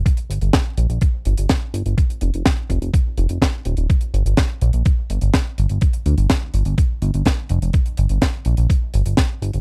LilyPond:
<<
  \new Staff \with { instrumentName = "Analog synth bass" } { \clef bass \time 4/4 \key ees \lydian \tempo 4 = 125 r8 g,,16 g,,16 r8 bes,,16 bes,,16 r8 g,,16 g,,16 r8 g,,16 g,,16 | r8 f,,16 f,,16 r8 f,,16 f,,16 r8 f,,16 f,,16 r8 ees,,16 ees,,16 | r8 g,,16 g,,16 r8 bes,,16 bes,,16 r8 g,,16 g,,16 r8 g,,16 g,,16 | r8 d,16 g,,16 r8 g,,16 g,,16 r8 g,,16 g,,16 r8 f,,16 f,,16 |
r8 g,,16 g,,16 r8 bes,,16 bes,,16 r8 g,,16 g,,16 r8 g,,16 g,,16 | }
  \new DrumStaff \with { instrumentName = "Drums" } \drummode { \time 4/4 <hh bd>16 hh16 hh16 hh16 <hh bd sn>8 hh16 hh16 <hh bd>8 hh16 hh16 <hh bd sn>8 hh16 hh16 | <hh bd>16 hh16 hh16 hh16 <hh bd sn>8 <hh bd>16 hh16 <hh bd>8 hh16 hh16 <hh bd sn>8 hh16 hh16 | <hh bd>16 hh16 hh16 hh16 <hh bd sn>8 hh16 hh16 <hh bd>8 hh16 hh16 <hh bd sn>8 hh16 hh16 | <hh bd>16 hh16 hh16 hh16 <hh bd sn>8 hh16 hh16 <hh bd>8 hh16 hh16 <hh bd sn>8 hh16 hh16 |
<hh bd>16 hh16 hh16 hh16 <hh bd sn>8 hh16 hh16 <hh bd>8 hh16 hh16 <hh bd sn>8 hh16 hh16 | }
>>